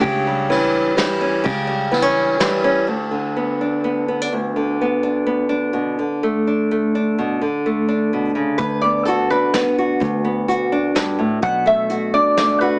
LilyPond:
<<
  \new Staff \with { instrumentName = "Resonator guitar played with a steel bar" } { \time 3/4 \key b \minor \tempo 4 = 126 r2. | r2. | r2. | r2. |
r2. | r2. | b'8 d''8 a'8 b'4 r8 | r2. |
fis''8 e''4 d''8 d''8 b'8 | }
  \new Staff \with { instrumentName = "Nylon-string guitar" } { \time 3/4 \key b \minor << { g'8 g8 cis'4 g8 cis'8 | g'8 g8 b16 cis'8. g8 cis'8 | r4 b8 d'8 b8 b16 d'16 | r4 b8 d'8 b8 d'8 |
r4 a8 d'8 a8 d'8 | r4 a8 d'4. | r8 b8 fis'8 d'8 b8 fis'8 | r8 b8 fis'8 d'4. |
r8 a8 fis'8 d'8 a8 fis'8 | } \\ { cis4 e4 e4 | cis4 e4 e4 | d,8 d2~ d8 | d,8 d2~ d8 |
b,8 d2~ d8 | b,8 d4. b,8 cis8 | d,2. | d,2 g,8 a,8 |
b,2. | } >> }
  \new Staff \with { instrumentName = "Fingered electric bass" } { \clef bass \time 3/4 \key b \minor cis,2 r4 | cis,2 r4 | r2. | r2. |
r2. | r2. | d,2 r4 | d,2 r4 |
b,,2 r4 | }
  \new DrumStaff \with { instrumentName = "Drums" } \drummode { \time 3/4 <bd cymr>4 cymr4 <cymr sn>4 | <bd cymr>4 cymr4 <cymr sn>4 | r4 r4 r4 | r4 r4 r4 |
r4 r4 r4 | r4 r4 r4 | <hh bd>4 hh4 <hh sn>4 | <hh bd>4 hh4 <hh sn>4 |
<hh bd>4 hh4 <hh sn>4 | }
>>